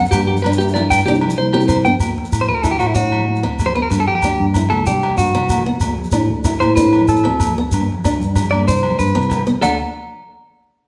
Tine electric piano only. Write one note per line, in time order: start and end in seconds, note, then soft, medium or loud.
0.13 0.39 G2 loud
0.44 0.57 G2 medium
0.59 0.99 G2 medium
1.06 1.33 C2 loud
1.38 1.51 C2 medium
1.54 1.85 C2 loud
1.85 1.92 G2 medium
2.00 2.14 D2 medium
2.32 2.46 A2 medium
2.48 2.75 D2 medium
2.80 2.93 A2 medium
2.96 3.23 A2 medium
3.28 3.41 A2 medium
3.43 3.84 D2 medium
3.91 4.05 G2 medium
4.23 4.37 D2 medium
4.39 4.66 G2 medium
4.71 4.84 C#2 medium
4.87 5.14 C2 medium
5.18 5.32 G2 medium
5.35 5.75 C2 medium
5.81 5.95 D2 loud
6.13 6.27 A2 medium
6.29 6.56 D2 medium
6.61 6.75 A2 medium
6.77 7.04 A2 loud
7.09 7.23 A2 medium
7.25 7.66 D2 medium
7.73 7.86 G2 loud
8.05 8.18 D2 loud
8.20 8.47 G2 loud
8.52 8.65 G2 medium
8.68 8.95 C2 medium
8.99 9.13 G2 medium
9.15 9.56 C2 medium
9.63 9.78 D2 medium